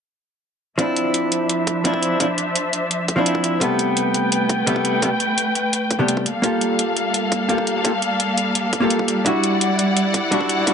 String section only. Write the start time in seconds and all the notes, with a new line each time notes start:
0.79 F3 D4 C5 E5
3.61 A3 B4 G5
6.26 G3 A#3 A4 F5
9.26 E4 D5 F#5